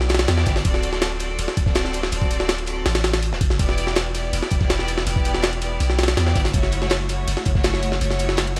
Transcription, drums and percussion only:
0.01 snare
0.09 snare, closed hi-hat, ride
0.14 snare, ride
0.19 snare, ride
0.28 snare, closed hi-hat, ride
0.38 snare
0.46 kick, snare, closed hi-hat, ride
0.56 snare, closed hi-hat
0.65 kick, closed hi-hat, ride
0.74 snare
0.82 closed hi-hat, ride
0.93 snare
1.02 snare, closed hi-hat, ride
1.20 closed hi-hat, ride
1.39 closed hi-hat, ride
1.48 snare
1.57 kick, closed hi-hat, ride
1.66 kick, snare
1.75 snare, closed hi-hat, ride
1.85 snare
1.93 closed hi-hat, ride
2.03 snare
2.12 closed hi-hat, ride
2.22 kick, closed hi-hat
2.31 closed hi-hat, ride
2.40 snare
2.48 snare, closed hi-hat, ride
2.58 ride
2.66 closed hi-hat, ride
2.86 snare, closed hi-hat, ride
2.95 snare, ride
3.04 snare, closed hi-hat, ride
3.14 snare, ride
3.22 closed hi-hat, ride
3.33 snare
3.41 kick, closed hi-hat, ride
3.50 snare
3.59 kick, closed hi-hat, ride
3.69 snare
3.78 closed hi-hat, ride
3.87 snare
3.95 snare, closed hi-hat, ride
4.14 closed hi-hat, ride
4.33 closed hi-hat, ride
4.43 snare
4.50 kick, closed hi-hat, ride
4.59 kick, snare
4.70 snare, closed hi-hat, ride
4.79 snare
4.88 closed hi-hat, ride
4.97 snare
5.07 closed hi-hat, ride
5.16 kick, closed hi-hat
5.25 closed hi-hat, ride
5.34 snare
5.42 snare, closed hi-hat, ride
5.53 ride
5.61 closed hi-hat, ride
5.80 closed hi-hat, ride
5.90 snare
5.98 snare, closed hi-hat, ride
6.03 snare, ride
6.08 snare, ride
6.17 snare, closed hi-hat, ride
6.26 snare
6.35 kick, snare, closed hi-hat, ride
6.44 snare, closed hi-hat
6.53 kick, closed hi-hat, ride
6.63 snare
6.72 closed hi-hat, ride
6.81 snare
6.90 snare, closed hi-hat, ride
7.09 closed hi-hat, ride
7.28 closed hi-hat, ride
7.37 snare
7.45 kick, closed hi-hat, ride
7.55 kick, snare
7.63 snare, closed hi-hat, ride
7.74 snare
7.83 closed hi-hat, ride
7.92 snare
8.01 closed hi-hat, ride
8.11 snare, closed hi-hat
8.19 closed hi-hat, ride
8.29 snare
8.37 snare, closed hi-hat, ride
8.47 ride
8.56 snare, closed hi-hat, ride

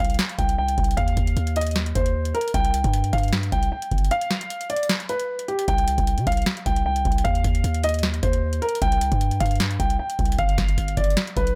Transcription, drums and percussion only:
0.05 closed hi-hat
0.10 closed hi-hat
0.14 closed hi-hat
0.19 snare, closed hi-hat
0.29 closed hi-hat
0.39 kick, closed hi-hat
0.49 closed hi-hat
0.68 closed hi-hat
0.78 kick, closed hi-hat
0.84 closed hi-hat
0.91 closed hi-hat
0.97 kick, closed hi-hat
1.08 closed hi-hat
1.17 kick, closed hi-hat
1.27 closed hi-hat
1.37 closed hi-hat
1.47 closed hi-hat
1.56 closed hi-hat, open hi-hat
1.61 closed hi-hat
1.67 closed hi-hat
1.71 closed hi-hat
1.76 snare, closed hi-hat
1.86 closed hi-hat
1.95 kick, closed hi-hat
2.06 closed hi-hat
2.25 closed hi-hat
2.35 closed hi-hat
2.41 closed hi-hat
2.48 closed hi-hat
2.54 kick, closed hi-hat
2.65 closed hi-hat
2.74 closed hi-hat
2.84 kick, closed hi-hat
2.94 closed hi-hat
3.04 closed hi-hat
3.13 kick, closed hi-hat
3.18 closed hi-hat
3.23 closed hi-hat
3.28 closed hi-hat
3.33 snare, closed hi-hat
3.43 closed hi-hat
3.52 kick, closed hi-hat
3.63 closed hi-hat
3.82 closed hi-hat
3.91 kick, closed hi-hat
3.98 closed hi-hat
4.05 closed hi-hat
4.11 closed hi-hat
4.21 closed hi-hat
4.31 snare, closed hi-hat
4.41 closed hi-hat
4.50 closed hi-hat
4.61 closed hi-hat
4.70 closed hi-hat, open hi-hat
4.76 closed hi-hat
4.83 closed hi-hat
4.89 snare, closed hi-hat
5.00 closed hi-hat
5.09 closed hi-hat
5.20 closed hi-hat
5.39 closed hi-hat
5.48 closed hi-hat
5.59 closed hi-hat
5.68 kick, closed hi-hat
5.78 closed hi-hat
5.88 closed hi-hat
5.98 kick, closed hi-hat
6.07 closed hi-hat
6.18 closed hi-hat
6.27 kick, closed hi-hat
6.32 closed hi-hat
6.37 closed hi-hat
6.42 closed hi-hat
6.46 snare, closed hi-hat
6.57 closed hi-hat
6.66 kick, closed hi-hat
6.76 closed hi-hat
6.96 closed hi-hat
7.05 kick, closed hi-hat
7.12 closed hi-hat
7.18 closed hi-hat
7.25 kick, closed hi-hat
7.35 closed hi-hat
7.44 kick, closed hi-hat
7.55 closed hi-hat
7.64 closed hi-hat
7.74 closed hi-hat
7.83 closed hi-hat, open hi-hat
7.89 closed hi-hat
7.94 closed hi-hat
7.99 closed hi-hat
8.03 snare, closed hi-hat
8.14 closed hi-hat
8.23 kick, closed hi-hat
8.33 closed hi-hat
8.53 closed hi-hat
8.62 closed hi-hat
8.69 closed hi-hat
8.75 closed hi-hat
8.82 kick, closed hi-hat
8.92 closed hi-hat
9.01 closed hi-hat
9.12 kick, closed hi-hat
9.21 closed hi-hat
9.31 closed hi-hat
9.40 kick, closed hi-hat
9.46 closed hi-hat
9.51 closed hi-hat
9.56 closed hi-hat
9.60 snare, closed hi-hat
9.71 closed hi-hat
9.80 kick, closed hi-hat
9.90 closed hi-hat
10.10 closed hi-hat
10.19 kick, closed hi-hat
10.25 closed hi-hat
10.32 closed hi-hat
10.39 kick, closed hi-hat
10.49 closed hi-hat
10.58 kick, snare, closed hi-hat
10.69 closed hi-hat
10.78 closed hi-hat
10.88 closed hi-hat
10.97 kick, closed hi-hat, open hi-hat
11.04 closed hi-hat
11.10 closed hi-hat
11.17 snare, closed hi-hat
11.27 closed hi-hat
11.37 kick, closed hi-hat
11.47 closed hi-hat

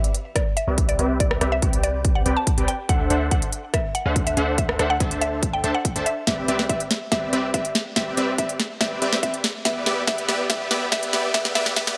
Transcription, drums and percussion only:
0.04 closed hi-hat
0.14 closed hi-hat
0.36 kick, cross-stick, closed hi-hat
0.57 closed hi-hat
0.78 kick, closed hi-hat
0.89 closed hi-hat
0.99 closed hi-hat
1.20 kick, closed hi-hat
1.31 cross-stick
1.41 cross-stick, closed hi-hat
1.62 kick, closed hi-hat
1.73 closed hi-hat
1.83 closed hi-hat
2.05 kick, closed hi-hat
2.26 closed hi-hat
2.47 kick, closed hi-hat
2.58 closed hi-hat
2.68 closed hi-hat
2.89 kick, closed hi-hat
3.10 closed hi-hat
3.31 kick, closed hi-hat
3.42 closed hi-hat
3.52 closed hi-hat
3.74 kick, cross-stick, closed hi-hat
3.95 closed hi-hat
4.16 kick, closed hi-hat
4.27 closed hi-hat
4.37 closed hi-hat
4.58 kick, closed hi-hat
4.69 cross-stick
4.79 cross-stick, closed hi-hat
5.00 kick, closed hi-hat
5.11 closed hi-hat
5.21 closed hi-hat
5.43 kick, closed hi-hat
5.64 closed hi-hat
5.85 kick, closed hi-hat
5.96 closed hi-hat
6.06 closed hi-hat
6.27 kick, snare, closed hi-hat
6.48 closed hi-hat
6.59 snare
6.69 kick, closed hi-hat
6.80 closed hi-hat
6.91 snare, closed hi-hat
7.12 kick, snare, closed hi-hat
7.33 closed hi-hat
7.54 kick, closed hi-hat
7.65 closed hi-hat
7.75 snare, closed hi-hat
7.96 kick, snare, closed hi-hat
8.17 closed hi-hat
8.38 kick, closed hi-hat
8.49 closed hi-hat
8.60 snare, closed hi-hat
8.81 kick, snare, closed hi-hat
9.02 closed hi-hat
9.13 snare
9.23 kick, closed hi-hat
9.34 closed hi-hat
9.44 snare, closed hi-hat
9.65 kick, snare, closed hi-hat
9.86 snare, closed hi-hat
10.07 kick, snare, closed hi-hat
10.18 closed hi-hat
10.29 snare, closed hi-hat
10.50 kick, snare, closed hi-hat
10.71 snare, closed hi-hat
10.92 kick, snare, closed hi-hat
11.03 closed hi-hat
11.13 snare, closed hi-hat
11.34 kick, snare, closed hi-hat
11.45 snare
11.55 snare, closed hi-hat
11.66 snare
11.76 kick, snare, closed hi-hat
11.87 snare, closed hi-hat

